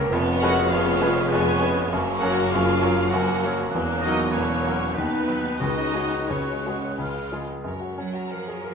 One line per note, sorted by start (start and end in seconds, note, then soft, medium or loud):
0.00 0.13 C#2 loud
0.00 0.13 C#3 medium
0.00 0.11 A#3 medium
0.00 0.12 A#3 medium
0.00 0.13 A#3 medium
0.00 0.10 C#4 loud
0.00 0.13 C#4 medium
0.00 0.11 A#4 loud
0.00 0.13 A#4 medium
0.09 1.86 F1 loud
0.09 0.41 F1 medium
0.09 1.86 F2 loud
0.09 0.41 F2 loud
0.09 0.66 B3 medium
0.09 0.67 B3 medium
0.09 0.67 C#4 medium
0.09 0.68 C#6 medium
0.38 0.69 F#4 medium
0.38 0.73 A#4 loud
0.38 0.70 F#5 medium
0.38 0.68 F#5 loud
0.43 0.69 G#3 medium
0.43 0.69 C#4 medium
0.43 0.70 B4 medium
0.68 1.01 F1 medium
0.68 1.00 F2 medium
0.68 1.29 B3 medium
0.68 1.29 C#4 medium
0.68 1.31 F4 medium
0.68 1.31 G#4 medium
0.68 1.31 F5 medium
0.68 0.98 F5 loud
0.68 1.30 C#6 medium
0.97 1.06 F#5 medium
1.01 1.28 G#3 medium
1.01 1.28 C#4 medium
1.01 1.28 B4 medium
1.01 1.14 F5 medium
1.14 1.22 D#5 medium
1.22 1.30 F5 medium
1.28 1.60 F1 medium
1.28 1.60 F2 medium
1.28 1.91 B3 medium
1.28 1.89 B3 medium
1.28 1.88 C#4 medium
1.28 1.90 G#4 medium
1.28 1.90 B4 medium
1.28 1.89 G#5 loud
1.28 1.89 G#5 medium
1.28 1.89 C#6 medium
1.61 1.88 G#3 medium
1.61 1.88 C#4 medium
1.61 1.89 B4 medium
1.89 3.72 F#1 medium
1.89 2.21 F#1 medium
1.89 3.71 F#2 medium
1.89 2.21 F#2 medium
1.89 3.09 A#3 medium
1.89 3.10 A#3 medium
1.89 3.08 C#4 medium
1.89 3.08 C#6 medium
2.19 2.48 F#3 medium
2.19 2.49 C#4 medium
2.19 2.49 F#4 medium
2.19 2.50 F#4 medium
2.19 2.52 A#4 medium
2.19 2.48 F#5 loud
2.19 2.52 F#5 medium
2.23 2.50 A#4 medium
2.50 2.81 F#2 medium
2.50 3.11 F4 medium
2.50 3.11 G#4 medium
2.50 3.10 F5 medium
2.50 3.11 F5 loud
2.55 2.82 F#1 medium
2.82 3.09 F#3 medium
2.82 3.08 C#4 medium
2.82 3.09 A#4 medium
3.08 3.70 A#3 medium
3.08 3.69 C#4 medium
3.08 3.71 F#4 medium
3.08 3.71 A#4 medium
3.08 3.70 F#5 medium
3.08 3.71 F#5 medium
3.08 3.69 C#6 medium
3.13 3.42 F#1 medium
3.13 3.41 F#2 medium
3.44 3.70 F#3 medium
3.44 3.71 C#4 medium
3.44 3.71 A#4 medium
3.70 4.90 E1 medium
3.70 4.90 E2 medium
3.70 4.31 A#3 medium
3.70 4.28 A#3 medium
3.70 4.28 C#4 medium
3.70 4.29 F#6 medium
3.74 4.02 E1 medium
3.74 4.03 E2 medium
4.01 4.30 D#4 medium
4.01 4.31 D#4 medium
4.01 4.33 F#4 medium
4.01 4.34 D#5 medium
4.01 4.31 D#5 loud
4.06 4.31 F#3 medium
4.06 4.32 F#4 medium
4.06 4.32 A#4 medium
4.30 4.95 A#3 medium
4.30 4.93 A#3 medium
4.30 4.93 C#4 medium
4.30 4.95 C#4 medium
4.30 4.94 E4 medium
4.30 4.96 C#5 medium
4.30 4.95 C#5 medium
4.30 4.92 F#6 medium
4.36 4.64 E1 medium
4.36 4.64 E2 medium
4.67 4.93 F#3 medium
4.67 4.94 F#4 medium
4.67 4.94 A#4 medium
4.93 5.60 D#2 medium
4.93 5.61 D#2 medium
4.93 5.60 B3 medium
4.93 5.59 B3 medium
4.93 5.61 B3 medium
4.93 5.62 B3 medium
4.93 5.60 D#4 medium
4.93 5.58 D#4 medium
4.93 5.60 B4 medium
4.93 5.59 F#6 medium
4.97 5.28 D#2 medium
4.97 5.28 D#3 medium
5.27 5.58 F#3 medium
5.27 5.58 F#4 medium
5.27 5.58 B4 medium
5.59 7.41 C#2 medium
5.59 7.42 C#2 medium
5.59 5.95 C#2 medium
5.59 6.60 C#3 medium
5.59 5.94 C#3 medium
5.59 6.27 G#3 medium
5.59 6.04 G#3 medium
5.59 6.28 C#4 medium
5.59 6.30 D#4 medium
5.59 6.27 F#4 medium
5.59 6.30 D#5 medium
5.59 6.31 D#5 medium
5.59 6.28 F#6 medium
5.64 6.30 D#4 medium
5.93 6.25 G#3 soft
5.93 6.26 F#4 soft
5.93 6.26 G#4 medium
6.29 6.63 C#2 medium
6.29 6.63 C#3 medium
6.29 6.96 G#3 medium
6.29 6.94 G#3 medium
6.29 6.97 C#4 medium
6.29 6.99 C#4 medium
6.29 6.96 F#4 medium
6.29 6.98 C#5 medium
6.33 6.98 F#6 medium
6.66 6.96 G#3 soft
6.66 6.96 F#4 medium
6.66 6.97 G#4 soft
6.98 7.31 C#2 medium
6.98 7.31 C#3 medium
6.98 7.32 G#3 medium
6.98 7.45 G#3 medium
6.98 7.46 F4 medium
6.98 7.34 F6 medium
7.32 7.62 G#3 soft
7.32 7.62 F4 soft
7.32 7.62 G#4 medium
7.64 8.74 F#2 medium
7.64 7.81 A#4 soft
7.64 8.74 A#4 medium
7.64 7.82 C#5 soft
7.68 8.74 F#4 medium
7.80 8.07 F#4 soft
7.80 7.99 C#5 soft
7.98 8.29 F#3 medium
7.98 8.25 C#4 soft
7.98 8.16 F#5 soft
8.13 8.41 F#4 soft
8.13 8.32 A#5 soft
8.31 8.74 F3 medium
8.31 8.58 A#4 soft
8.31 8.63 A#4 medium
8.31 8.49 F#5 soft
8.48 8.65 G#4 soft
8.48 8.65 C#5 soft
8.64 8.74 G#4 soft
8.64 8.74 A#4 soft